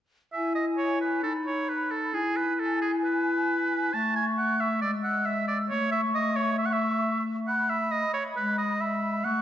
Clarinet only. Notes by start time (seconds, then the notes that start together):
0.34 E4
1.24 D#4
2.14 E4
3.94 A3
4.82 G#3
5.72 A3
8.36 G#3
9.25 A3